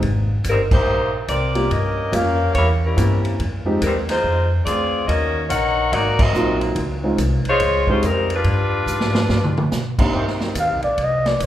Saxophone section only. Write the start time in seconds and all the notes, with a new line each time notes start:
0.49 G3 C4 D#4 A#4
0.72 A#3 D#4 G4 C5
1.28 C4 G4 A#4 D5
1.71 C#4 G4 A#4 D#5
2.14 C#4 G4 A#4 F5
2.55 A#3 E4 G4 C#5
2.84 G3 C#4 E4 A#4
3.84 G3 C4 D#4 A#4
4.09 G#3 D#4 F4 C5
4.64 C4 F4 G#4 D5
5.07 C#4 F#4 A#4 D#5
5.46 D#4 A#4 C#5 F5 F#5
5.92 A#3 D#4 F#4 D5
6.20 C4 F#4 A#4 D#5
7.47 G#3 F4 C5 C#5
7.90 G#3 C#4 F4 C5
8.05 G3 C4 D#4 A#4
8.34 G3 D4 F4 B4